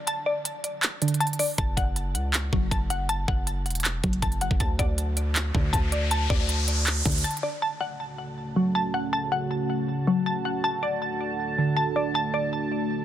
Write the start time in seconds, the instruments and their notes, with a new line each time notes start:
Already playing: synth pluck D3 D5
0.07 synth pluck A5, closed hi-hat
0.26 synth pluck D5
0.45 closed hi-hat
0.64 closed hi-hat
0.83 clap, closed hi-hat
1.02 synth pluck D3, closed hi-hat
1.08 closed hi-hat
1.14 closed hi-hat
1.20 synth pluck A5, closed hi-hat
1.27 closed hi-hat
1.33 closed hi-hat
1.39 synth pluck D5, open hi-hat
1.58 808-style bass F#1, synth pluck A5, kick, closed hi-hat
1.77 808-style bass F#1, synth pluck F#5, kick, closed hi-hat
1.96 closed hi-hat
2.15 808-style bass C#2, closed hi-hat
2.34 clap, closed hi-hat
2.53 808-style bass F#1, synth pluck F#3, kick
2.71 808-style bass F#1, synth pluck A5, kick, closed hi-hat
2.90 synth pluck F#5, closed hi-hat
3.09 synth pluck A5, closed hi-hat
3.28 808-style bass F#1, synth pluck F#5, kick
3.47 closed hi-hat
3.66 808-style bass E1, closed hi-hat
3.71 closed hi-hat
3.75 closed hi-hat
3.80 closed hi-hat
3.85 clap, closed hi-hat
4.04 808-style bass F#1, synth pluck F#3, kick, closed hi-hat
4.13 closed hi-hat
4.22 808-style bass F#1, synth pluck A5, kick, closed hi-hat
4.32 closed hi-hat
4.41 synth pluck F#5, closed hi-hat
4.51 808-style bass F#1, kick
4.60 808-style bass D2, synth pluck A5, kick, closed hi-hat, riser
4.79 808-style bass D2, synth pluck D5, kick, closed hi-hat
4.98 closed hi-hat
5.17 closed hi-hat
5.36 clap, closed hi-hat
5.55 808-style bass D2, synth pluck D3, kick
5.73 808-style bass D2, synth pluck A5, kick, closed hi-hat
5.92 synth pluck D5, closed hi-hat
6.11 synth pluck A5, closed hi-hat
6.30 808-style bass D2, synth pluck D5, kick
6.49 closed hi-hat
6.68 closed hi-hat
6.87 clap, closed hi-hat
7.05 808-style bass D2, synth pluck D3, kick, closed hi-hat
7.12 closed hi-hat
7.18 closed hi-hat
7.24 synth pluck A5, closed hi-hat
7.31 closed hi-hat
7.37 closed hi-hat
7.43 synth pluck D5
7.62 analog synth pad C#3 A3 F#4 A5, synth pluck A5
7.81 synth pluck F#5
8.56 synth pluck F#3
8.75 synth pluck A5
8.94 synth pluck F#5
9.13 synth pluck A5
9.32 synth pluck F#5
10.07 synth pluck F#3
10.26 synth pluck A5
10.45 synth pluck F#5
10.64 analog synth pad D3 A3, synth pluck A5
10.83 synth pluck D5
11.58 synth pluck D3
11.77 synth pluck A5
11.96 synth pluck D5
12.15 synth pluck A5
12.34 synth pluck D5